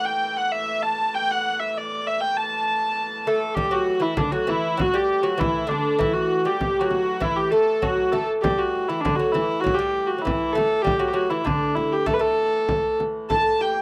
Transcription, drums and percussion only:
3.57 frame drum medium
3.88 frame drum soft
4.17 frame drum medium
4.48 frame drum medium
4.79 frame drum medium
5.10 frame drum soft
5.41 frame drum medium
5.71 frame drum medium
6.01 frame drum medium
6.31 frame drum soft
6.61 frame drum medium
6.91 frame drum medium
7.21 frame drum medium
7.83 frame drum medium
8.13 frame drum medium
8.44 frame drum medium
8.75 frame drum soft
9.05 frame drum medium
9.35 frame drum medium
9.66 frame drum medium
9.96 frame drum soft
10.27 frame drum medium
10.58 frame drum medium
10.87 frame drum medium
11.47 frame drum medium
11.77 frame drum medium
12.07 frame drum medium
12.69 frame drum medium
13.00 frame drum medium
13.30 frame drum medium

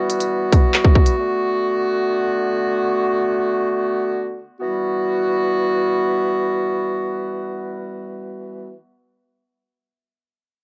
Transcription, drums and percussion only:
0.10 closed hi-hat medium
0.20 closed hi-hat medium
0.52 kick medium
0.52 closed hi-hat medium
0.74 clap loud
0.84 kick medium
0.95 kick medium
1.06 closed hi-hat medium

